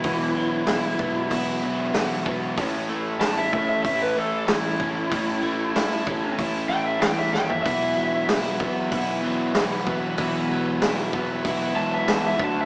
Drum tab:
HH |o---o---o---o---|o---o---o---o---|o---o---o---o---|o---o---o---o---|
SD |----o-------o---|----o-------o---|----o-------o-o-|----o-------o---|
FT |----------------|----------------|---------------o|----------------|
BD |o-----o-o-----o-|o-----o-o-----o-|o-----o-o-------|o-----o-o-----o-|

HH |o---o---o---o---|
SD |----o-------o---|
FT |----------------|
BD |o-----o-o-----o-|